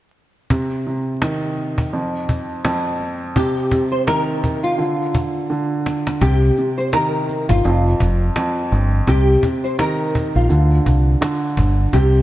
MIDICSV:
0, 0, Header, 1, 6, 480
1, 0, Start_track
1, 0, Key_signature, -3, "minor"
1, 0, Tempo, 714286
1, 338, Time_signature, 4, 2, 24, 8
1, 8213, End_track
2, 0, Start_track
2, 0, Title_t, "Nylon-string guitar"
2, 0, Program_c, 0, 24
2, 2260, Note_on_c, 0, 67, 93
2, 2616, Note_off_c, 0, 67, 0
2, 2632, Note_on_c, 0, 72, 70
2, 2725, Note_off_c, 0, 72, 0
2, 2736, Note_on_c, 0, 70, 86
2, 3094, Note_off_c, 0, 70, 0
2, 3114, Note_on_c, 0, 65, 76
2, 4149, Note_off_c, 0, 65, 0
2, 4174, Note_on_c, 0, 67, 105
2, 4533, Note_off_c, 0, 67, 0
2, 4554, Note_on_c, 0, 72, 78
2, 4646, Note_off_c, 0, 72, 0
2, 4657, Note_on_c, 0, 70, 96
2, 5015, Note_off_c, 0, 70, 0
2, 5033, Note_on_c, 0, 65, 84
2, 6068, Note_off_c, 0, 65, 0
2, 6107, Note_on_c, 0, 67, 106
2, 6460, Note_off_c, 0, 67, 0
2, 6477, Note_on_c, 0, 72, 78
2, 6568, Note_off_c, 0, 72, 0
2, 6586, Note_on_c, 0, 70, 87
2, 6940, Note_off_c, 0, 70, 0
2, 6962, Note_on_c, 0, 65, 76
2, 7993, Note_off_c, 0, 65, 0
2, 8019, Note_on_c, 0, 67, 99
2, 8213, Note_off_c, 0, 67, 0
2, 8213, End_track
3, 0, Start_track
3, 0, Title_t, "Grand piano"
3, 0, Program_c, 1, 0
3, 336, Note_on_c, 1, 48, 84
3, 454, Control_c, 1, 64, 127
3, 573, Note_off_c, 1, 48, 0
3, 583, Note_on_c, 1, 48, 76
3, 822, Note_on_c, 1, 51, 82
3, 1298, Note_on_c, 1, 41, 78
3, 1300, Note_off_c, 1, 51, 0
3, 1301, Note_off_c, 1, 48, 0
3, 1308, Control_c, 1, 64, 0
3, 1427, Control_c, 1, 64, 127
3, 1767, Note_off_c, 1, 41, 0
3, 1778, Note_on_c, 1, 41, 83
3, 2257, Note_on_c, 1, 48, 96
3, 2258, Note_off_c, 1, 41, 0
3, 2268, Control_c, 1, 64, 0
3, 2379, Control_c, 1, 64, 127
3, 2490, Note_off_c, 1, 48, 0
3, 2500, Note_on_c, 1, 48, 73
3, 2737, Note_on_c, 1, 51, 91
3, 3212, Note_on_c, 1, 50, 80
3, 3218, Note_off_c, 1, 51, 0
3, 3219, Note_off_c, 1, 48, 0
3, 3228, Control_c, 1, 64, 0
3, 3356, Control_c, 1, 64, 127
3, 3683, Note_off_c, 1, 50, 0
3, 3694, Note_on_c, 1, 50, 84
3, 4176, Note_off_c, 1, 50, 0
3, 4176, Note_on_c, 1, 48, 90
3, 4186, Control_c, 1, 64, 0
3, 4294, Control_c, 1, 64, 127
3, 4414, Note_off_c, 1, 48, 0
3, 4424, Note_on_c, 1, 48, 80
3, 4662, Note_on_c, 1, 51, 87
3, 5139, Note_on_c, 1, 41, 83
3, 5140, Note_off_c, 1, 51, 0
3, 5141, Note_off_c, 1, 48, 0
3, 5146, Control_c, 1, 64, 0
3, 5277, Control_c, 1, 64, 127
3, 5608, Note_off_c, 1, 41, 0
3, 5618, Note_on_c, 1, 41, 86
3, 6098, Note_off_c, 1, 41, 0
3, 6099, Note_on_c, 1, 48, 95
3, 6107, Control_c, 1, 64, 0
3, 6235, Control_c, 1, 64, 127
3, 6333, Note_off_c, 1, 48, 0
3, 6343, Note_on_c, 1, 48, 76
3, 6578, Note_on_c, 1, 51, 90
3, 7051, Note_on_c, 1, 50, 88
3, 7058, Note_off_c, 1, 51, 0
3, 7061, Note_off_c, 1, 48, 0
3, 7065, Control_c, 1, 64, 0
3, 7178, Control_c, 1, 64, 127
3, 7523, Note_off_c, 1, 50, 0
3, 7533, Note_on_c, 1, 50, 89
3, 8016, Note_off_c, 1, 50, 0
3, 8017, Note_on_c, 1, 48, 94
3, 8027, Control_c, 1, 64, 0
3, 8128, Control_c, 1, 64, 127
3, 8213, Note_off_c, 1, 48, 0
3, 8213, End_track
4, 0, Start_track
4, 0, Title_t, "Fingered electric bass"
4, 0, Program_c, 2, 33
4, 4178, Note_on_c, 2, 36, 111
4, 4367, Note_off_c, 2, 36, 0
4, 5036, Note_on_c, 2, 31, 92
4, 5116, Note_off_c, 2, 31, 0
4, 5140, Note_on_c, 2, 29, 108
4, 5328, Note_off_c, 2, 29, 0
4, 5379, Note_on_c, 2, 29, 95
4, 5568, Note_off_c, 2, 29, 0
4, 5860, Note_on_c, 2, 31, 96
4, 6048, Note_off_c, 2, 31, 0
4, 6099, Note_on_c, 2, 36, 103
4, 6288, Note_off_c, 2, 36, 0
4, 6958, Note_on_c, 2, 34, 91
4, 7037, Note_off_c, 2, 34, 0
4, 7059, Note_on_c, 2, 38, 106
4, 7248, Note_off_c, 2, 38, 0
4, 7300, Note_on_c, 2, 36, 88
4, 7489, Note_off_c, 2, 36, 0
4, 7778, Note_on_c, 2, 31, 100
4, 7967, Note_off_c, 2, 31, 0
4, 8019, Note_on_c, 2, 36, 118
4, 8208, Note_off_c, 2, 36, 0
4, 8213, End_track
5, 0, Start_track
5, 0, Title_t, "Cajon"
5, 338, Note_on_c, 9, 36, 101
5, 405, Note_off_c, 9, 36, 0
5, 581, Note_on_c, 9, 38, 37
5, 649, Note_off_c, 9, 38, 0
5, 818, Note_on_c, 9, 38, 106
5, 885, Note_off_c, 9, 38, 0
5, 1061, Note_on_c, 9, 38, 41
5, 1128, Note_off_c, 9, 38, 0
5, 1195, Note_on_c, 9, 36, 93
5, 1262, Note_off_c, 9, 36, 0
5, 1299, Note_on_c, 9, 38, 46
5, 1366, Note_off_c, 9, 38, 0
5, 1538, Note_on_c, 9, 36, 90
5, 1605, Note_off_c, 9, 36, 0
5, 1778, Note_on_c, 9, 38, 109
5, 1845, Note_off_c, 9, 38, 0
5, 2019, Note_on_c, 9, 38, 42
5, 2086, Note_off_c, 9, 38, 0
5, 2258, Note_on_c, 9, 36, 103
5, 2325, Note_off_c, 9, 36, 0
5, 2496, Note_on_c, 9, 36, 90
5, 2563, Note_off_c, 9, 36, 0
5, 2738, Note_on_c, 9, 38, 112
5, 2805, Note_off_c, 9, 38, 0
5, 2982, Note_on_c, 9, 36, 77
5, 3049, Note_off_c, 9, 36, 0
5, 3219, Note_on_c, 9, 38, 45
5, 3286, Note_off_c, 9, 38, 0
5, 3458, Note_on_c, 9, 36, 92
5, 3525, Note_off_c, 9, 36, 0
5, 3702, Note_on_c, 9, 38, 41
5, 3770, Note_off_c, 9, 38, 0
5, 3939, Note_on_c, 9, 38, 84
5, 4006, Note_off_c, 9, 38, 0
5, 4078, Note_on_c, 9, 38, 84
5, 4145, Note_off_c, 9, 38, 0
5, 4177, Note_on_c, 9, 36, 107
5, 4244, Note_off_c, 9, 36, 0
5, 4420, Note_on_c, 9, 38, 39
5, 4488, Note_off_c, 9, 38, 0
5, 4657, Note_on_c, 9, 38, 114
5, 4724, Note_off_c, 9, 38, 0
5, 4899, Note_on_c, 9, 38, 43
5, 4966, Note_off_c, 9, 38, 0
5, 5035, Note_on_c, 9, 36, 98
5, 5102, Note_off_c, 9, 36, 0
5, 5139, Note_on_c, 9, 38, 48
5, 5207, Note_off_c, 9, 38, 0
5, 5378, Note_on_c, 9, 36, 95
5, 5445, Note_off_c, 9, 36, 0
5, 5617, Note_on_c, 9, 38, 114
5, 5685, Note_off_c, 9, 38, 0
5, 5859, Note_on_c, 9, 38, 45
5, 5926, Note_off_c, 9, 38, 0
5, 6098, Note_on_c, 9, 36, 106
5, 6165, Note_off_c, 9, 36, 0
5, 6336, Note_on_c, 9, 36, 94
5, 6403, Note_off_c, 9, 36, 0
5, 6579, Note_on_c, 9, 38, 113
5, 6646, Note_off_c, 9, 38, 0
5, 6822, Note_on_c, 9, 36, 79
5, 6889, Note_off_c, 9, 36, 0
5, 7060, Note_on_c, 9, 38, 48
5, 7127, Note_off_c, 9, 38, 0
5, 7299, Note_on_c, 9, 36, 95
5, 7366, Note_off_c, 9, 36, 0
5, 7539, Note_on_c, 9, 38, 115
5, 7606, Note_off_c, 9, 38, 0
5, 7777, Note_on_c, 9, 36, 100
5, 7844, Note_off_c, 9, 36, 0
5, 8018, Note_on_c, 9, 36, 104
5, 8085, Note_off_c, 9, 36, 0
5, 8213, End_track
6, 0, Start_track
6, 0, Title_t, "Drums"
6, 4176, Note_on_c, 9, 82, 74
6, 4243, Note_off_c, 9, 82, 0
6, 4411, Note_on_c, 9, 82, 47
6, 4478, Note_off_c, 9, 82, 0
6, 4563, Note_on_c, 9, 82, 56
6, 4630, Note_off_c, 9, 82, 0
6, 4653, Note_on_c, 9, 82, 76
6, 4720, Note_off_c, 9, 82, 0
6, 4898, Note_on_c, 9, 82, 53
6, 4965, Note_off_c, 9, 82, 0
6, 5135, Note_on_c, 9, 82, 80
6, 5202, Note_off_c, 9, 82, 0
6, 5384, Note_on_c, 9, 82, 55
6, 5451, Note_off_c, 9, 82, 0
6, 5620, Note_on_c, 9, 82, 65
6, 5687, Note_off_c, 9, 82, 0
6, 5859, Note_on_c, 9, 82, 45
6, 5926, Note_off_c, 9, 82, 0
6, 6097, Note_on_c, 9, 82, 72
6, 6164, Note_off_c, 9, 82, 0
6, 6331, Note_on_c, 9, 82, 46
6, 6398, Note_off_c, 9, 82, 0
6, 6484, Note_on_c, 9, 82, 58
6, 6551, Note_off_c, 9, 82, 0
6, 6574, Note_on_c, 9, 82, 74
6, 6641, Note_off_c, 9, 82, 0
6, 6818, Note_on_c, 9, 82, 51
6, 6885, Note_off_c, 9, 82, 0
6, 7055, Note_on_c, 9, 82, 79
6, 7122, Note_off_c, 9, 82, 0
6, 7304, Note_on_c, 9, 82, 56
6, 7372, Note_off_c, 9, 82, 0
6, 7539, Note_on_c, 9, 82, 67
6, 7607, Note_off_c, 9, 82, 0
6, 7779, Note_on_c, 9, 82, 48
6, 7846, Note_off_c, 9, 82, 0
6, 8017, Note_on_c, 9, 82, 75
6, 8084, Note_off_c, 9, 82, 0
6, 8213, End_track
0, 0, End_of_file